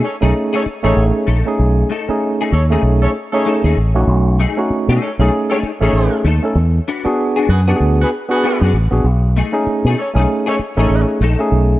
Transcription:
0.04 C#4 A4 C#5
0.21 B1 A3 C#4 D#4 G#4
0.53 A3 C#4 D#4 G#4 A4 C#5
0.66 muted fingered electric bass stroke
0.83 A1 A3 C#4 D#4 G#4 A4 C#5
0.97 A1
1.27 A#1 A3 D#4 A4
1.46 A3 C#4 D#4 G#4
1.59 B1
1.90 A3 D#4 A4
2.08 A3 C#4 D#4 G#4, muted fingered electric bass stroke
2.41 A3 D#4 G#4
2.51 D#2 C#4 A4 C#5
2.70 A3 C#4 D#4 G#4
2.83 B1
3.02 C#4 A4 C#5
3.33 A3 C#4 D#4 G#4 A4 C#5
3.46 A3 D#4 A4
3.64 D#2 A3 D#4 G#4
3.77 A1
3.94 A#1 A3 C#4 D#4 F#4
4.07 B1
4.40 A3 D#4 G#4
4.57 A3 C#4 D#4 F#4
4.70 muted fingered electric bass stroke
4.88 B2 A3 D#4 G#4
5.01 C#4 A4 C#5
5.19 B1 A3 C#4 D#4 G#4
5.50 A3 C#4 D#4 G#4 A4 C#5
5.63 muted fingered electric bass stroke
5.81 A1 A3 C#4 D#4 G#4 A4 C#5
5.85 A3
5.93 A1
6.24 D#2 A3 D#4 A4
6.43 A3 C#4 D#4 A4
6.55 E2
6.88 D4 F#4 B4
7.04 B3 D4 F#4 G#4, muted fingered electric bass stroke
7.36 D4 F#4 G#4
7.49 F#2 B3 F#4 G#4 B4
7.68 B3 D4 F#4 G4 G#4
7.76 G#4
7.80 D2
8.02 B3 F#4 G#4 B4
8.29 B3 D4 F#4 G#4 B4
8.44 D4 F#4 B4
8.61 F#2 D4 F#4 G#4
8.73 A1
8.91 A#1 B3 D4 F#4 G#4
9.04 B1
9.37 A3 D#4 G#4
9.52 A3 C#4 D#4 G#4
9.67 muted fingered electric bass stroke
9.85 B2 D#4 G#4
9.89 A3
9.98 C#4 A4 C#5
10.14 B1 A3 C#4 D#4 G#4
10.19 A3
10.46 A3 C#4 D#4 G#4 A4 C#5
10.59 muted fingered electric bass stroke
10.77 A1 A3 C#4 D#4 G#4 A4 C#5
10.82 A3
10.90 A1
11.21 A#1 A3 D#4 A4
11.39 A3 C#4 D#4 G#4
11.52 B1

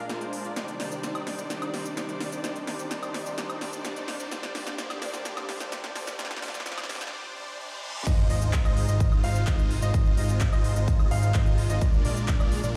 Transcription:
Already playing: A#2 G#3 D5
0.09 A#1 G#3 D4 F4 A#4 C5, snare, closed hi-hat
0.21 closed hi-hat
0.33 open hi-hat
0.45 A#1 G#3 D4 F4 A#4 D5, closed hi-hat
0.56 C2 C3 D#3 G3 D4 D#4 C5 D5, snare, closed hi-hat, riser, shaker
0.68 closed hi-hat, shaker
0.80 C2 G3 D4 D#4 C5 D5, snare, open hi-hat
0.92 closed hi-hat, shaker
1.03 snare, closed hi-hat, shaker
1.15 C2 G3 D4 D#4 C5 D5, closed hi-hat, high woodblock, shaker
1.27 snare, open hi-hat
1.39 C2 G3 D4 D#4 C5 D5, closed hi-hat, shaker
1.50 C2 G3 D4 D#4 C5 D5, snare, closed hi-hat, shaker
1.62 closed hi-hat, high woodblock, shaker
1.74 C2 G3 D4 D#4 C5 D5, snare, open hi-hat
1.85 shaker
1.97 snare, closed hi-hat, shaker
2.09 C2 G3 D4 D#4 C5 D5, closed hi-hat, shaker
2.20 snare, open hi-hat
2.32 C2 G3 D4 D#4 C5 D5, closed hi-hat, shaker
2.44 C2 G3 D4 D#4 C5 D5, snare, closed hi-hat, shaker
2.56 closed hi-hat, shaker
2.67 C2 G3 D4 D#4 C5 D5, snare, open hi-hat
2.79 closed hi-hat, shaker
2.91 snare, closed hi-hat, shaker
3.03 C2 G3 D4 D#4 C5 D5, closed hi-hat, high woodblock, shaker
3.14 snare, open hi-hat
3.26 C2 G3 D4 D#4 C5 D5, closed hi-hat, shaker
3.38 C2 G3 D4 D#4 C5 D5, snare, closed hi-hat, shaker
3.50 closed hi-hat, high woodblock, shaker
3.61 C2 G3 D4 D#4 C5 D5, snare, open hi-hat
3.73 closed hi-hat, shaker
3.85 snare, closed hi-hat, shaker
3.96 C2 G3 D4 D#4 C5 D5, closed hi-hat, shaker
4.08 snare, open hi-hat
4.20 C2 G3 D4 D#4 C5 D5, closed hi-hat, shaker
4.31 G1 D3 G3 A#3 D4 G4 C5 D5, snare, closed hi-hat, shaker
4.43 snare, closed hi-hat, shaker
4.55 G1 G3 D4 C5 D5, snare, open hi-hat
4.67 snare, closed hi-hat, shaker
4.78 G1 G3 D4 C5 D5, snare, closed hi-hat, shaker
4.90 snare, closed hi-hat, high woodblock, shaker
5.02 G1 G3 D4 C5 D5, snare, open hi-hat
5.14 snare, closed hi-hat, shaker
5.25 G1 G3 D4 C5 D5, snare, closed hi-hat, shaker
5.37 snare, closed hi-hat, high woodblock, shaker
5.49 G1 G3 D4 C5 D5, snare, open hi-hat
5.60 snare, closed hi-hat, shaker
5.72 G1 G3 D4 C5 D5, snare, closed hi-hat, shaker
5.84 snare, closed hi-hat, shaker
5.95 G1 G3 D4 C5 D5, snare, open hi-hat
6.07 snare, closed hi-hat, shaker
6.19 G1 G3 D4 F4 C5 D5, snare, closed hi-hat, shaker
6.25 snare
6.31 snare, closed hi-hat, shaker
6.37 snare
6.42 G1 G3 D4 C5 D5, snare, open hi-hat
6.48 snare
6.54 snare, closed hi-hat, shaker
6.60 snare
6.66 G1 G3 D4 C5 D5, snare, closed hi-hat, shaker
6.72 snare
6.78 snare, closed hi-hat, high woodblock, shaker
6.84 snare
6.89 G1 G3 D4 C5 D5, snare, open hi-hat
6.95 snare
7.01 snare, closed hi-hat, shaker
7.07 snare
7.13 G3 D4 C5 D5, reverse cymbal
7.36 G3 D4 C5 D5
7.60 G3 D4 C5 D5
7.83 G3 D4 C5 D5
8.07 G#1 C3 G#3 D#4 F4 C5 D#5, kick, closed hi-hat, crash, sub drop, shaker
8.18 shaker
8.30 G#1 G#3 D#4 F4 C5 D#5, open hi-hat
8.42 closed hi-hat, shaker
8.53 kick, clap, closed hi-hat, shaker
8.65 G#1 G#3 D#4 F4 C5 D#5, closed hi-hat, high woodblock, shaker
8.77 open hi-hat
8.89 G#1 G#3 D#4 F4 C5 D#5, closed hi-hat, shaker
9.00 kick, closed hi-hat, shaker
9.12 high woodblock, shaker
9.24 G#1 G#3 D#4 F4 C5 F5, open hi-hat
9.35 closed hi-hat, shaker
9.47 G#1 G#3 D#4 F4 C5 D#5, kick, clap, closed hi-hat, shaker
9.59 closed hi-hat, shaker
9.71 open hi-hat
9.82 G#1 G#3 D#4 F4 C5 D#5, closed hi-hat, shaker
9.94 G#1 D#5, kick, closed hi-hat, shaker
10.06 shaker
10.17 G#1 G#3 D#4 F4 C5 D#5, open hi-hat
10.29 closed hi-hat, shaker
10.41 kick, clap, closed hi-hat, shaker
10.53 G#1 G#3 D#4 F4 C5 D#5, closed hi-hat, high woodblock, shaker
10.64 open hi-hat
10.76 G#1 G#3 D#4 F4 C5 D#5, closed hi-hat, shaker
10.88 kick, closed hi-hat, shaker
11.00 high woodblock, shaker
11.11 G#1 G#3 D#4 F4 C5 F5, open hi-hat
11.23 closed hi-hat, shaker
11.34 G#1 G#3 D#4 C5 D#5, kick, clap, closed hi-hat, shaker
11.46 closed hi-hat, shaker
11.58 open hi-hat
11.70 G#1 G#3 D#4 F4 C5 D#5, closed hi-hat, shaker
11.81 A#1 A#2 G#3 D4 A#4 D5, kick, closed hi-hat, shaker
11.93 shaker
12.05 A#1 G#3 D4 F4 A#4 D5, open hi-hat
12.17 closed hi-hat, shaker
12.28 kick, clap, closed hi-hat, shaker
12.40 A#1 G#3 D4 F4 A#4 D5, closed hi-hat, high woodblock, shaker
12.52 open hi-hat
12.64 A#1 G#3 D4 F4 A#4 D5, closed hi-hat, shaker

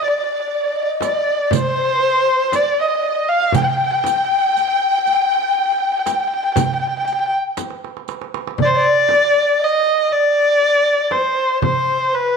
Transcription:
0.01 D5, darbuka ka
0.09 D5
0.19 D5
0.25 D5
0.33 D5
0.41 D5
0.48 D5
0.56 D5
0.62 D5
0.69 D5
0.76 D5 D#5
0.83 D5
1.01 D5, riq, darbuka tek, frame drum
1.44 D5
1.51 C5 D5, riq, frame drum, darbuka dum
1.56 C5
2.03 darbuka ka
2.52 D5, riq, darbuka tek, frame drum
2.79 D#5
2.89 D#5
2.96 D#5
3.03 D#5
3.09 D#5
3.17 D#5
3.28 F5
3.52 G5 G#5, riq, frame drum, darbuka dum
3.60 G5
3.70 G5
3.78 G5
3.85 G5
3.92 G5
4.00 G5, frame drum
4.05 G5, riq, darbuka tek
4.17 G5
4.25 G5
4.32 G5
4.39 G5
4.47 G5
4.54 G5, riq, darbuka ka
4.62 G5
4.68 G5
4.75 G5
4.82 G5
4.92 G5
4.99 G5
5.06 G5, riq, darbuka ka
5.13 G5
5.22 G5
5.29 G5
5.35 G5
5.43 G5
5.49 G5
5.59 G5
5.66 G5
5.73 G5
5.79 G5
5.86 G5
5.93 G5
5.98 G5
6.06 G5, riq, darbuka tek, frame drum
6.14 G5
6.21 G5
6.28 G5
6.35 G5
6.45 G5
6.53 G5, riq, frame drum, darbuka dum
6.60 G5
6.65 G5
6.74 G5
6.81 G5
6.88 G5
6.98 G5
7.06 G5, riq, darbuka ka
7.13 G5
7.20 G5
7.27 G5
7.57 riq, darbuka tek, frame drum
7.70 darbuka ka
7.84 darbuka tek
7.97 darbuka ka
8.08 riq, darbuka tek
8.22 darbuka ka
8.34 darbuka tek
8.47 darbuka ka
8.58 D5, frame drum, darbuka dum
8.65 C5
8.72 D5
9.09 darbuka tek, frame drum
9.60 D#5
10.10 D5, darbuka ka
11.11 C5, darbuka tek, frame drum
11.62 C5, darbuka dum, frame drum
12.13 B4, darbuka ka

